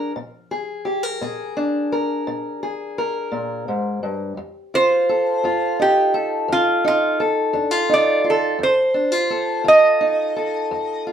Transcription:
0.00 4.37 F3 medium
0.00 0.11 D4 medium
0.00 0.11 G#4 medium
0.00 0.11 A#4 medium
0.16 0.79 A#2 medium
0.51 1.21 G#4 medium
0.85 1.03 G4 medium
1.03 1.91 A#4 medium
1.21 1.84 A#2 medium
1.21 2.62 G#4 medium
1.57 4.34 D4 medium
1.92 2.97 A#4 medium
2.27 2.90 A#2 medium
2.63 4.34 G#4 medium
2.98 4.34 A#4 medium
3.32 3.67 A#2 medium
3.68 4.02 G#2 medium
4.03 4.37 G2 medium
4.37 5.01 F2 medium
4.74 5.44 F4 medium
4.74 5.76 C5 medium
5.09 6.14 A4 medium
5.44 6.07 F2 medium
5.44 7.53 F4 medium
5.79 6.83 D#4 medium
5.79 6.14 G4 medium
6.14 7.19 A4 medium
6.48 7.12 F2 medium
6.52 6.85 F4 medium
6.84 7.88 D#4 medium
6.84 7.20 F4 medium
7.20 8.56 A4 medium
7.53 8.17 F2 medium
7.53 7.71 D4 medium
7.71 8.23 F4 medium
7.89 8.56 D#4 medium
7.94 8.26 D5 medium
8.24 8.56 F4 medium
8.30 8.62 A4 medium
8.59 9.23 F2 medium
8.63 9.64 C5 medium
8.94 9.12 D4 medium
9.12 9.63 F4 soft
9.30 10.35 A4 medium
9.64 10.28 F2 medium
9.64 11.06 F4 medium
9.68 11.04 D#5 medium
10.01 11.12 D#4 medium
10.36 11.12 A4 medium
10.71 11.12 F2 medium
11.07 11.12 F4 medium

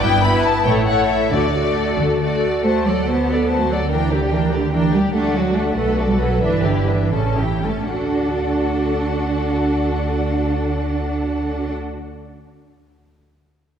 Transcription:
0.01 0.54 G1 medium
0.01 0.55 G2 medium
0.01 0.22 B3 soft
0.01 0.22 E4 medium
0.01 0.22 B4 medium
0.01 0.22 G5 medium
0.22 0.65 B3 medium
0.22 0.65 E4 medium
0.22 0.65 E4 soft
0.22 0.65 B4 medium
0.22 0.43 B5 medium
0.44 0.65 A5 medium
0.64 1.20 A1 medium
0.64 1.21 A2 medium
0.64 0.87 A3 medium
0.64 0.87 E4 soft
0.64 0.86 A4 soft
0.64 0.86 C#5 soft
0.64 0.72 G5 medium
0.86 1.31 A3 soft
0.86 1.31 E4 soft
0.86 1.31 A4 soft
0.86 1.30 C#5 soft
0.86 1.08 F#5 medium
1.07 1.30 E5 medium
1.31 1.87 D2 medium
1.31 1.87 D3 medium
1.31 1.54 A3 soft
1.31 1.54 F#4 soft
1.31 1.53 A4 soft
1.31 1.97 D5 medium
1.31 1.53 D5 soft
1.54 2.19 A3 soft
1.54 2.19 F#4 soft
1.54 2.19 A4 soft
1.54 2.19 D5 soft
1.97 2.53 D2 medium
1.97 2.54 D3 medium
2.21 2.64 A3 soft
2.21 2.64 F#4 soft
2.21 2.64 A4 soft
2.21 2.64 D5 soft
2.64 5.10 D2 soft
2.64 2.84 A3 medium
2.64 2.84 F#4 soft
2.64 2.85 C5 soft
2.64 2.84 A5 soft
2.85 3.07 F#3 medium
2.85 3.07 A4 soft
2.85 3.07 D5 soft
2.85 3.07 F#5 soft
3.07 3.58 B3 medium
3.07 3.29 F#4 soft
3.07 3.29 C5 soft
3.07 3.28 A5 soft
3.26 3.48 F#5 soft
3.31 3.50 A4 soft
3.31 3.50 D5 soft
3.47 3.69 C5 soft
3.47 3.67 A5 soft
3.51 3.69 F#4 soft
3.59 3.69 A3 soft
3.68 3.78 F#3 medium
3.68 3.91 D5 soft
3.68 3.89 F#5 soft
3.72 3.91 A4 soft
3.90 4.11 E3 medium
3.90 4.10 D4 soft
3.90 4.10 A#4 soft
3.90 4.10 G5 soft
4.10 4.32 D3 medium
4.10 4.32 G4 soft
4.10 4.33 G4 soft
4.10 4.31 D5 soft
4.31 4.52 E3 medium
4.31 4.53 D4 soft
4.31 4.53 A#4 soft
4.31 4.52 G5 soft
4.52 4.72 D3 medium
4.52 4.73 G4 soft
4.52 4.73 D5 soft
4.73 4.81 E3 medium
4.73 4.93 D4 soft
4.73 4.92 A#4 soft
4.73 4.92 G5 soft
4.94 5.02 G3 medium
4.94 5.14 G4 soft
4.94 5.15 G4 soft
4.94 5.14 D5 soft
5.14 5.74 D2 soft
5.14 5.34 A3 medium
5.14 5.33 D4 soft
5.14 5.33 A4 soft
5.14 5.33 F#5 soft
5.34 5.55 F#3 medium
5.34 5.55 F#4 soft
5.34 5.55 D5 soft
5.55 6.08 A3 medium
5.55 5.76 D4 soft
5.55 5.77 A4 soft
5.55 5.74 F#5 soft
5.75 6.40 B1 soft
5.75 5.96 A4 soft
5.75 5.97 B4 soft
5.75 5.95 F#5 soft
5.97 6.19 F#4 soft
5.97 6.20 A4 soft
5.97 6.20 D5 soft
6.08 6.12 G3 medium
6.19 6.41 F#3 medium
6.19 6.42 A4 soft
6.19 6.40 B4 soft
6.19 6.42 F#5 soft
6.41 7.12 G1 soft
6.41 6.64 E3 medium
6.41 6.63 D4 soft
6.41 6.63 B4 soft
6.41 6.63 E5 soft
6.64 6.88 D3 medium
6.64 6.89 E4 soft
6.64 6.88 G4 soft
6.64 6.88 D5 soft
6.87 7.12 E3 medium
6.87 7.13 D4 soft
6.87 7.12 B4 soft
6.87 7.12 E5 soft
7.11 7.65 A1 soft
7.11 7.38 C#3 medium
7.11 7.36 C#4 soft
7.11 7.36 A4 soft
7.11 7.36 A5 soft
7.37 7.65 E3 soft
7.37 7.65 E4 soft
7.37 7.64 G4 soft
7.37 7.65 G5 soft
7.63 7.91 A3 soft
7.63 7.91 C#4 soft
7.63 7.90 A4 soft
7.63 7.91 A5 soft
7.91 11.74 D2 soft
7.91 11.74 D4 soft
7.91 11.74 F#4 soft
7.91 11.74 A4 soft
7.91 11.74 F#5 soft

